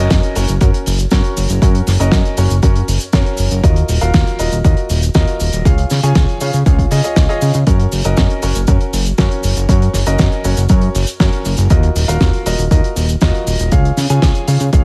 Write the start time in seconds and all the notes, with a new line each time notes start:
Already playing: F#4 A#4 D#5
0.00 C#4
0.11 F#2, kick, snare, closed hi-hat, cabasa
0.23 closed hi-hat
0.35 F#1 C#4 F#4 A#4 C#5, open hi-hat, cabasa
0.48 F#1, closed hi-hat, cabasa
0.61 F#2 C#4 F#4 A#4 C#5, kick, closed hi-hat, cabasa
0.74 closed hi-hat
0.86 F#1, open hi-hat, cabasa
0.98 closed hi-hat, cabasa
1.11 F#2 C#4 F#4 A#4 C#5, kick, snare, closed hi-hat, cabasa
1.24 closed hi-hat
1.37 F#1, open hi-hat, cabasa
1.49 F#1, closed hi-hat, cabasa
1.62 F#2 C#4 F#4 A#4 C#5, kick, closed hi-hat, cabasa
1.75 closed hi-hat
1.87 F#1, snare, open hi-hat, cabasa
2.00 F#1 C#4 F#4 A#4 D#5, closed hi-hat, cabasa
2.12 F#2, kick, snare, closed hi-hat, cabasa
2.25 closed hi-hat
2.37 F#1 C#4 F#4 A#4 C#5, open hi-hat, cabasa
2.50 F#1, closed hi-hat, cabasa
2.63 F#2 C#4 F#4 A#4 C#5, kick, closed hi-hat, cabasa
2.75 closed hi-hat
2.88 F#1, open hi-hat, cabasa
3.00 closed hi-hat, cabasa
3.13 F#2 C#4 F#4 A#4 C#5, kick, snare, closed hi-hat, cabasa
3.26 closed hi-hat
3.37 F#1, open hi-hat, cabasa
3.51 F#1, closed hi-hat, cabasa
3.63 D#2 F4 F#4 A#4 D#5, kick, closed hi-hat, cabasa
3.76 closed hi-hat
3.89 D#1, open hi-hat, cabasa
4.01 D#1 F4 F#4 A#4 F5, closed hi-hat, cabasa
4.14 D#2, kick, snare, closed hi-hat, cabasa
4.27 closed hi-hat
4.39 D#1 F4 F#4 A#4 D#5, open hi-hat, cabasa
4.51 D#1, closed hi-hat, cabasa
4.64 D#2 F4 F#4 A#4 D#5, kick, closed hi-hat, cabasa
4.77 closed hi-hat
4.90 D#1, open hi-hat, cabasa
5.02 closed hi-hat, cabasa
5.14 D#2 F4 F#4 A#4 D#5, kick, snare, closed hi-hat, cabasa
5.27 closed hi-hat
5.40 D#1, open hi-hat, cabasa
5.53 D#1, closed hi-hat, cabasa
5.65 C#2 F4 G#4 C#5 F5, kick, closed hi-hat, cabasa
5.78 closed hi-hat
5.90 C#3, snare, open hi-hat, cabasa
6.03 C#3 F4 G#4 C#5 G#5, closed hi-hat, cabasa
6.15 C#2, kick, snare, closed hi-hat, cabasa
6.29 closed hi-hat
6.41 C#3 F4 G#4 C#5 F5, open hi-hat, cabasa
6.53 C#3, closed hi-hat, cabasa
6.66 C#2 F4 G#4 C#5 F5, kick, closed hi-hat, cabasa
6.79 kick, closed hi-hat
6.91 C#3 F4 G#4 C#5 D#5, open hi-hat, cabasa
7.04 F4 G#4 C#5 D#5, closed hi-hat, cabasa
7.16 C#2, kick, snare, closed hi-hat, cabasa
7.29 F4 G#4 C#5 D#5, closed hi-hat
7.41 C#3, open hi-hat, cabasa
7.54 C#3, closed hi-hat, cabasa
7.67 F#2 C#4 F#4 A#4 C#5, kick, closed hi-hat, cabasa
7.80 closed hi-hat
7.92 F#1, open hi-hat, cabasa
8.04 F#1 C#4 F#4 A#4 D#5, closed hi-hat, cabasa
8.17 F#2, kick, snare, closed hi-hat, cabasa
8.30 closed hi-hat
8.42 F#1 C#4 F#4 A#4 C#5, open hi-hat, cabasa
8.55 F#1, closed hi-hat, cabasa
8.67 F#2 C#4 F#4 A#4 C#5, kick, closed hi-hat, cabasa
8.81 closed hi-hat
8.93 F#1, open hi-hat, cabasa
9.05 closed hi-hat, cabasa
9.18 F#2 C#4 F#4 A#4 C#5, kick, snare, closed hi-hat, cabasa
9.31 closed hi-hat
9.43 F#1, open hi-hat, cabasa
9.56 F#1, closed hi-hat, cabasa
9.69 F#2 C#4 F#4 A#4 C#5, kick, closed hi-hat, cabasa
9.82 closed hi-hat
9.93 F#1, snare, open hi-hat, cabasa
10.06 F#1 C#4 F#4 A#4 D#5, closed hi-hat, cabasa
10.19 F#2, kick, snare, closed hi-hat, cabasa
10.32 closed hi-hat
10.44 F#1 C#4 F#4 A#4 C#5, open hi-hat, cabasa
10.57 F#1, closed hi-hat, cabasa
10.69 F#2 C#4 F#4 A#4 C#5, kick, closed hi-hat, cabasa
10.81 closed hi-hat
10.95 F#1, open hi-hat, cabasa
11.07 closed hi-hat, cabasa
11.20 F#2 C#4 F#4 A#4 C#5, kick, snare, closed hi-hat, cabasa
11.32 closed hi-hat
11.45 F#1, open hi-hat, cabasa
11.57 F#1, closed hi-hat, cabasa
11.70 D#2 F4 F#4 A#4 D#5, kick, closed hi-hat, cabasa
11.83 closed hi-hat
11.95 D#1, open hi-hat, cabasa
12.08 D#1 F4 F#4 A#4 F5, closed hi-hat, cabasa
12.21 D#2, kick, snare, closed hi-hat, cabasa
12.33 closed hi-hat
12.46 D#1 F4 F#4 A#4 D#5, open hi-hat, cabasa
12.58 D#1, closed hi-hat, cabasa
12.71 D#2 F4 F#4 A#4 D#5, kick, closed hi-hat, cabasa
12.84 closed hi-hat
12.96 D#1, open hi-hat, cabasa
13.09 closed hi-hat, cabasa
13.21 D#2 F4 F#4 A#4 D#5, kick, snare, closed hi-hat, cabasa
13.35 closed hi-hat
13.47 D#1, open hi-hat, cabasa
13.59 D#1, closed hi-hat, cabasa
13.72 C#2 F4 G#4 C#5 F5, kick, closed hi-hat, cabasa
13.85 closed hi-hat
13.97 C#3, snare, open hi-hat, cabasa
14.10 C#3 F4 G#4 C#5 G#5, closed hi-hat, cabasa
14.22 C#2, kick, snare, closed hi-hat, cabasa
14.35 closed hi-hat
14.48 C#3 F4 G#4 C#5 F5, open hi-hat, cabasa
14.60 C#3, closed hi-hat, cabasa
14.73 C#2 F4 G#4 C#5 F5, kick, closed hi-hat, cabasa